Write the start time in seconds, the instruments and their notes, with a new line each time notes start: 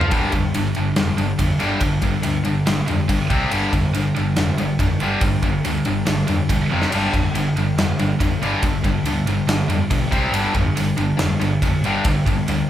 Already playing: picked electric bass F2, distorted electric guitar F3
0.01 floor tom
0.10 picked electric bass G1, distorted electric guitar G2 D3 G3, kick, ride
0.32 picked electric bass F2, distorted electric guitar G2 D3, kick, ride
0.54 picked electric bass G1, distorted electric guitar G2 D3, ride
0.75 picked electric bass G1, distorted electric guitar G2 D3, ride
0.96 picked electric bass F1, distorted electric guitar G2 D3, snare, ride
1.18 picked electric bass G1, distorted electric guitar G2 D3, ride
1.38 picked electric bass F2, distorted electric guitar G2 D3, kick, ride
1.59 picked electric bass G1, distorted electric guitar G2 D3 G3, snare, ride
1.80 picked electric bass G1, distorted electric guitar G2 D3, kick, ride
2.01 picked electric bass G1, distorted electric guitar G2 D3, kick, ride
2.22 picked electric bass D2, distorted electric guitar G2 D3, ride
2.44 picked electric bass G1, distorted electric guitar G2 D3, ride
2.66 picked electric bass G1, distorted electric guitar G2 D3, snare, ride
2.88 picked electric bass F2, distorted electric guitar G2 D3, ride
3.09 picked electric bass G1, distorted electric guitar G2 D3, kick, ride
3.30 picked electric bass C2, distorted electric guitar C3 G3 C4, kick, ride
3.51 picked electric bass G1, distorted electric guitar G2 D3 G3, ride
3.72 picked electric bass F2, distorted electric guitar G2 D3, kick, ride
3.94 picked electric bass G1, distorted electric guitar G2 D3, ride
4.16 picked electric bass G1, distorted electric guitar G2 D3, ride
4.36 picked electric bass F1, distorted electric guitar G2 D3, snare, ride
4.58 picked electric bass G1, distorted electric guitar G2 D3, ride
4.79 picked electric bass F2, distorted electric guitar G2 D3, kick, ride
5.00 picked electric bass G1, distorted electric guitar G2 D3 G3, ride
5.21 picked electric bass G1, distorted electric guitar G2 D3, kick, ride
5.43 picked electric bass G1, distorted electric guitar G2 D3, kick, ride
5.65 picked electric bass D2, distorted electric guitar G2 D3, ride
5.85 picked electric bass G1, distorted electric guitar G2 D3, ride
6.07 picked electric bass G1, distorted electric guitar G2 D3, snare, ride
6.28 picked electric bass F2, distorted electric guitar G2 D3, ride
6.49 picked electric bass E1, distorted electric guitar G2 D3, kick, ride
6.71 picked electric bass F1, distorted electric guitar F2 C3 F3, high tom
6.82 snare
6.92 picked electric bass G1, distorted electric guitar G2 D3 G3, crash, ride
7.13 picked electric bass F2, distorted electric guitar G2 D3, kick, ride
7.34 picked electric bass G1, distorted electric guitar G2 D3, ride
7.56 picked electric bass G1, distorted electric guitar G2 D3, ride
7.76 picked electric bass F1, snare, ride
7.80 distorted electric guitar G2 D3
7.98 picked electric bass G1, distorted electric guitar G2 D3, ride
8.20 picked electric bass F2, distorted electric guitar G2 D3, kick, ride
8.41 picked electric bass G1, distorted electric guitar G2 D3 G3, ride
8.63 picked electric bass G1, distorted electric guitar G2 D3, kick, ride
8.84 picked electric bass G1, distorted electric guitar G2 D3, kick, ride
9.03 picked electric bass D2, distorted electric guitar G2 D3, ride
9.25 picked electric bass G1, distorted electric guitar G2 D3, ride
9.46 picked electric bass G1, distorted electric guitar G2 D3, snare, ride
9.68 picked electric bass F2, distorted electric guitar G2 D3, ride
9.90 picked electric bass B1, distorted electric guitar G2 D3, kick, ride
10.11 picked electric bass C2, distorted electric guitar C3 G3 C4, kick, ride
10.32 picked electric bass G1, distorted electric guitar G2 D3 G3, ride
10.54 picked electric bass F2, distorted electric guitar G2 D3, kick, ride
10.76 picked electric bass G1, distorted electric guitar G2 D3, ride
10.97 picked electric bass G1, distorted electric guitar G2 D3, ride
11.17 picked electric bass F1, distorted electric guitar G2 D3, snare, ride
11.40 picked electric bass G1, distorted electric guitar G2 D3, ride
11.62 picked electric bass F2, distorted electric guitar G2 D3, kick, ride
11.84 picked electric bass G1, distorted electric guitar G2 D3 G3, ride
12.05 picked electric bass G1, distorted electric guitar G2 D3, kick, ride
12.26 picked electric bass G1, distorted electric guitar G2 D3, kick, ride
12.48 picked electric bass D2, distorted electric guitar G2 D3, ride